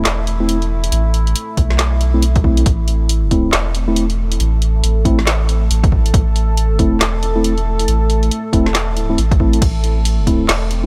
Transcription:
0.00 2.65 A3 medium
0.00 2.69 E4 medium
0.05 0.91 E1 medium
0.05 snare loud
0.05 clap medium
0.05 closed hi-hat medium
0.27 closed hi-hat medium
0.40 0.57 A3 medium
0.40 0.57 C4 medium
0.40 0.57 E4 medium
0.49 closed hi-hat medium
0.62 closed hi-hat soft
0.84 closed hi-hat medium
0.92 1.34 A1 loud
0.92 closed hi-hat medium
1.14 closed hi-hat medium
1.27 closed hi-hat soft
1.36 closed hi-hat medium
1.57 2.43 B1 loud
1.57 kick medium
1.57 closed hi-hat medium
1.70 snare soft
1.79 snare loud
1.79 clap medium
1.79 closed hi-hat medium
2.01 closed hi-hat medium
2.14 2.23 A3 medium
2.14 2.23 C4 medium
2.14 2.23 E4 loud
2.22 closed hi-hat medium
2.36 kick loud
2.36 closed hi-hat soft
2.44 2.65 B1 medium
2.44 2.63 A3 medium
2.44 2.63 C4 medium
2.44 2.63 E4 medium
2.44 kick medium
2.57 closed hi-hat medium
2.66 3.52 A1 loud
2.66 10.86 A3 medium
2.66 9.64 A4 medium
2.66 kick loud
2.66 closed hi-hat medium
2.88 closed hi-hat medium
3.09 closed hi-hat medium
3.31 3.50 A3 medium
3.31 3.50 C4 medium
3.31 3.50 E4 loud
3.31 kick medium
3.31 closed hi-hat medium
3.53 4.39 E1 loud
3.53 snare loud
3.53 clap medium
3.53 closed hi-hat medium
3.75 closed hi-hat medium
3.88 4.04 A3 medium
3.88 4.04 C4 medium
3.88 4.04 E4 loud
3.96 closed hi-hat medium
4.10 closed hi-hat soft
4.32 closed hi-hat medium
4.40 4.82 A1 loud
4.40 closed hi-hat medium
4.62 closed hi-hat medium
4.84 5.69 A1 medium
4.84 closed hi-hat medium
5.05 5.18 A3 loud
5.05 5.18 C4 medium
5.05 5.18 E4 loud
5.05 kick medium
5.05 closed hi-hat medium
5.19 snare soft
5.27 snare loud
5.27 clap medium
5.27 closed hi-hat medium
5.49 closed hi-hat medium
5.71 6.13 A1 medium
5.71 closed hi-hat medium
5.84 kick loud
5.84 closed hi-hat soft
5.92 kick medium
6.06 closed hi-hat medium
6.14 7.00 A1 loud
6.14 kick loud
6.14 closed hi-hat medium
6.36 closed hi-hat medium
6.57 closed hi-hat medium
6.79 6.97 A3 medium
6.79 6.97 C4 medium
6.79 6.97 E4 medium
6.79 kick medium
6.79 closed hi-hat medium
7.01 7.87 E1 medium
7.01 snare loud
7.01 clap medium
7.01 closed hi-hat medium
7.23 closed hi-hat soft
7.36 7.52 A3 medium
7.36 7.52 C4 medium
7.36 7.52 E4 loud
7.44 closed hi-hat medium
7.58 closed hi-hat soft
7.79 closed hi-hat medium
7.88 8.30 A1 medium
7.88 closed hi-hat medium
8.10 closed hi-hat medium
8.23 closed hi-hat soft
8.31 closed hi-hat medium
8.53 9.17 E1 loud
8.53 8.66 A3 loud
8.53 8.66 C4 medium
8.53 8.66 E4 loud
8.53 kick medium
8.53 closed hi-hat medium
8.66 snare soft
8.75 snare loud
8.75 clap medium
8.75 closed hi-hat medium
8.97 closed hi-hat soft
9.10 9.18 A3 medium
9.10 9.18 C4 medium
9.10 9.18 E4 medium
9.18 9.60 A1 medium
9.18 closed hi-hat medium
9.31 kick loud
9.31 closed hi-hat soft
9.40 9.58 A3 medium
9.40 9.58 C4 medium
9.40 9.58 E4 medium
9.40 kick medium
9.53 closed hi-hat medium
9.62 10.47 A1 loud
9.62 10.86 C4 medium
9.62 kick loud
9.62 closed hi-hat medium
9.62 ride medium
9.84 closed hi-hat medium
10.05 closed hi-hat medium
10.05 ride soft
10.27 10.45 A3 medium
10.27 10.45 C4 medium
10.27 10.45 E4 medium
10.27 kick medium
10.27 closed hi-hat medium
10.49 10.86 E1 loud
10.49 snare loud
10.49 clap medium
10.49 closed hi-hat medium
10.49 ride medium
10.71 closed hi-hat soft

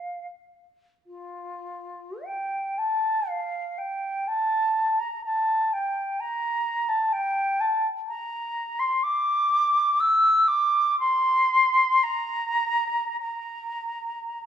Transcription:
0.00 0.26 F5 soft
1.06 2.25 F4 medium
2.23 2.79 G5 medium
2.78 3.30 A5 medium
3.29 3.79 F5 medium
3.78 4.29 G5 medium
4.27 5.01 A5 medium
4.99 5.23 A#5 medium
5.25 5.74 A5 medium
5.73 6.21 G5 medium
6.20 6.90 A#5 medium
6.88 7.14 A5 medium
7.12 7.61 G5 medium
7.60 7.86 A5 medium
8.07 8.80 A#5 medium
8.79 9.04 C6 medium
9.03 10.01 D6 medium
10.00 10.49 E6 medium
10.47 10.99 D6 medium
10.99 12.04 C6 loud
12.03 13.20 A#5 loud
13.20 14.46 A#5 medium

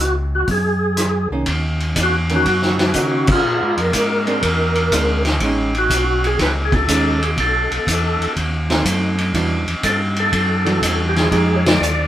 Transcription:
0.00 0.44 C#2 medium
0.00 0.16 F#4 medium
0.35 0.49 F#4 medium
0.47 1.27 F#2 medium
0.47 1.29 G#4 medium
0.47 kick soft
0.47 open hi-hat soft
0.97 cross-stick medium
0.97 closed hi-hat medium
1.30 1.46 C2 medium
1.30 1.46 D#3 soft
1.30 1.46 A#3 medium
1.30 1.46 C#4 medium
1.46 1.94 D#2 medium
1.46 kick soft
1.46 ride medium
1.80 ride soft
1.96 2.44 E2 medium
1.96 kick soft
1.96 hi-hat pedal soft
1.96 ride medium
2.03 2.17 F#4 medium
2.29 2.44 D#3 medium
2.29 2.45 A#3 medium
2.29 2.45 C#4 medium
2.29 ride soft
2.36 3.27 F#4 medium
2.45 2.93 F#2 medium
2.45 kick soft
2.45 ride medium
2.62 snare soft
2.78 snare soft
2.78 ride soft
2.94 3.43 C#3 medium
2.94 3.25 D#3 soft
2.94 3.26 A#3 soft
2.94 3.26 C#4 soft
2.94 kick soft
2.94 hi-hat pedal medium
2.94 ride medium
3.27 kick medium
3.27 crash medium
3.32 3.81 F4 medium
3.45 3.60 A#2 medium
3.62 3.78 G#2 medium
3.77 3.92 F2 medium
3.77 5.23 A#4 medium
3.77 ride soft
3.93 4.41 G#2 medium
3.93 kick soft
3.93 hi-hat pedal medium
3.93 ride medium
4.27 4.41 G#3 medium
4.27 4.42 C4 medium
4.27 4.42 D4 medium
4.27 ride soft
4.43 4.90 E2 medium
4.43 kick soft
4.43 ride medium
4.75 ride soft
4.92 5.39 D2 medium
4.92 5.22 G#3 medium
4.92 5.23 C4 medium
4.92 5.23 D4 medium
4.92 kick soft
4.92 hi-hat pedal medium
4.92 ride medium
5.25 snare soft
5.25 ride soft
5.40 5.89 A1 medium
5.40 5.72 G#3 medium
5.40 5.72 C#4 medium
5.40 kick soft
5.40 ride medium
5.44 5.73 D#4 medium
5.75 6.27 F#4 medium
5.75 ride soft
5.90 6.38 B1 medium
5.90 kick soft
5.90 hi-hat pedal medium
5.90 ride medium
6.24 6.40 G#4 medium
6.24 ride soft
6.39 6.87 C#2 medium
6.39 6.52 B4 loud
6.39 kick soft
6.39 snare soft
6.39 ride medium
6.65 6.74 G#4 medium
6.72 7.25 A4 medium
6.72 kick medium
6.72 ride soft
6.88 7.36 D#2 medium
6.88 7.19 G#3 medium
6.88 7.19 C#4 medium
6.88 7.19 D#4 medium
6.88 kick soft
6.88 hi-hat pedal medium
6.88 ride medium
7.22 7.31 G#4 medium
7.22 ride soft
7.37 7.69 B1 medium
7.37 8.33 A4 medium
7.37 kick soft
7.37 ride medium
7.71 7.79 B1 soft
7.71 ride soft
7.87 8.18 E2 medium
7.87 kick soft
7.87 hi-hat pedal medium
7.87 ride medium
8.19 8.27 E2 soft
8.19 ride soft
8.36 8.84 D#2 medium
8.36 kick soft
8.36 ride medium
8.70 9.31 A3 medium
8.70 9.32 C4 medium
8.70 9.32 D#4 medium
8.70 snare soft
8.70 ride soft
8.85 9.33 F#2 medium
8.85 kick soft
8.85 hi-hat pedal medium
8.85 ride medium
9.18 ride soft
9.34 9.65 E2 medium
9.34 9.64 E3 medium
9.34 9.65 G3 medium
9.34 9.65 D4 medium
9.34 9.65 F#4 medium
9.34 kick soft
9.34 ride medium
9.67 9.75 E2 soft
9.67 ride soft
9.83 10.31 G2 medium
9.83 10.00 A4 medium
9.83 kick soft
9.83 hi-hat pedal soft
9.83 ride medium
10.16 11.03 A4 medium
10.16 ride soft
10.32 10.80 F#2 medium
10.32 kick soft
10.32 ride medium
10.65 11.27 E3 medium
10.65 11.28 G3 medium
10.65 11.28 D4 medium
10.65 11.28 F#4 medium
10.65 ride soft
10.82 11.30 E2 medium
10.82 kick soft
10.82 hi-hat pedal medium
10.82 ride medium
11.09 11.17 G4 medium
11.16 11.57 G#4 medium
11.16 snare soft
11.16 ride soft
11.31 11.79 F2 medium
11.31 11.61 F3 medium
11.31 11.61 G#3 medium
11.31 11.61 D#4 medium
11.31 11.62 G4 medium
11.31 kick soft
11.31 ride medium
11.56 11.65 C#5 medium
11.66 12.07 D5 medium
11.66 snare medium
11.66 ride medium
11.80 12.07 D#2 medium
11.80 hi-hat pedal medium

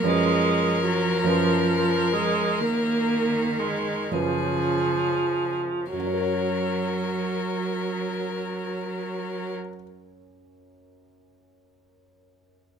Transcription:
0.00 1.21 F#2 soft
0.00 2.62 F3 soft
0.00 1.21 F3 soft
0.00 1.22 C#4 soft
0.00 4.14 A#4 soft
0.04 0.83 G#3 medium
0.04 1.22 B4 soft
0.84 1.27 F#3 soft
1.23 4.07 F#2 soft
1.23 4.08 F3 soft
1.23 2.14 F3 soft
1.23 4.08 C#4 soft
1.23 4.08 B4 soft
2.13 2.61 G#3 medium
2.59 4.13 D#3 soft
2.59 3.60 A#3 medium
3.59 4.14 G#3 soft
4.11 5.88 F#2 soft
4.11 5.59 C#3 soft
4.11 5.88 F3 soft
4.11 5.93 F3 soft
4.11 5.89 C#4 soft
4.11 5.60 G#4 soft
4.11 5.89 B4 soft
5.93 9.53 F#2 soft
5.93 9.54 F#3 soft
5.93 9.53 A#4 soft
6.00 9.60 F#3 soft
6.07 9.68 C#4 soft
6.14 9.74 A#4 soft
6.21 9.82 C#5 soft

